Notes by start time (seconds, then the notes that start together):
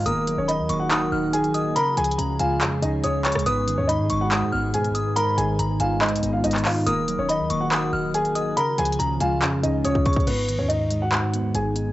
Already playing: D#3
0.06 D#1 D#3 F#3 A#3 F#4 A#4 D#6, closed hi-hat
0.27 F#3, closed hi-hat
0.38 D#1 C#4 C#5
0.48 D#3 D#4 D#5 B5, closed hi-hat
0.59 D#2
0.69 D#1 A#3 C#6, closed hi-hat
0.80 F#4 F#5
0.91 D#3 D#6, clap, closed hi-hat
1.12 D#1 D#4 F6
1.33 D#3 G#4 G#5, closed hi-hat
1.44 C#1, closed hi-hat
1.54 D#5 D#6, closed hi-hat
1.76 C#3 F3 G#3 C#4 G#4 A#4 A#5 B5, closed hi-hat
1.97 C#2 F3 G#4 G#5, closed hi-hat
2.04 closed hi-hat
2.11 closed hi-hat
2.18 C#2 C#3 A#5, closed hi-hat
2.39 C#2 G#3 F4 F5 G#5, closed hi-hat
2.61 F2 C#3, clap, closed hi-hat
2.82 C#2 C#4 D#4 D#5, closed hi-hat
3.04 C#2 C#3 C#4 C#5 D#6, closed hi-hat
3.25 C#5 C#6, clap, closed hi-hat, open hi-hat
3.32 C#2, cross-stick, closed hi-hat
3.39 closed hi-hat
3.46 G#1 G#2 D#3 B3 B4 D#6, closed hi-hat
3.68 D#3, closed hi-hat
3.78 D#2 C#4 C#5
3.88 G#2 D#4 D#5 B5, closed hi-hat
4.00 G#2
4.10 G#1 G#3 C#6, closed hi-hat
4.21 F#4 F#5
4.31 G#2 D#6, clap, closed hi-hat
4.42 G#2
4.52 G#1 B3 F6
4.74 G#2 B2 G#4 G#5, closed hi-hat
4.85 closed hi-hat
4.90 G#1
4.95 D#4 D#6, closed hi-hat
5.16 G#2 A#4 A#5 B5, closed hi-hat
5.38 G#1 D#3 G#4 G#5, closed hi-hat
5.59 G#1 G#2 A#5, closed hi-hat
5.80 G#1 G#3 F4 F5 G#5, closed hi-hat
6.01 G#2 D#4 D#5, clap, closed hi-hat
6.09 B1, closed hi-hat
6.16 closed hi-hat
6.23 G#1 B3, closed hi-hat
6.33 F4 F5
6.44 G#1 G#2 D#4 D#5, closed hi-hat
6.51 clap, closed hi-hat
6.58 closed hi-hat
6.65 D#4 F4 F5, clap, open hi-hat
6.87 D#1 D#3 F#3 A#3 F#4 A#4 D#6, closed hi-hat
7.08 F#3, closed hi-hat
7.18 D#1 C#4 C#5
7.29 D#3 D#4 D#5 B5, closed hi-hat
7.40 D#2
7.50 D#1 A#3 C#6, closed hi-hat
7.61 F#4 F#5
7.72 D#3 D#6, clap, closed hi-hat
7.93 D#1 D#4 F6
8.14 D#3 G#4 G#5, closed hi-hat
8.25 C#1, closed hi-hat
8.35 D#5 D#6, closed hi-hat
8.57 C#3 F3 G#3 F4 A#4 A#5 B5, closed hi-hat
8.78 C#2 F3 G#4 G#5, closed hi-hat
8.85 closed hi-hat
8.92 closed hi-hat
8.99 C#2 C#3 A#5, closed hi-hat
9.20 C#2 G#3 F4 F5 G#5, closed hi-hat
9.42 F2 C#3, clap, closed hi-hat
9.63 C#2 C#4 D#4 D#5, closed hi-hat
9.84 C#2 C#3 C#4 C#5 D#6, closed hi-hat
9.95 kick
10.05 C#5 C#6, kick, closed hi-hat, open hi-hat
10.13 kick, closed hi-hat
10.20 closed hi-hat
10.27 G#1 G#2 B3 B4, closed hi-hat, crash
10.48 D#3, closed hi-hat
10.59 D#2 C#4 C#5
10.68 G#2 D#4 D#5, closed hi-hat
10.91 G#3, closed hi-hat
11.02 F#4 F#5
11.12 G#2, clap, closed hi-hat
11.23 G#2
11.34 B3, closed hi-hat
11.39 D#2
11.55 G#1 G#2 G#4 G#5, closed hi-hat
11.76 D#4, closed hi-hat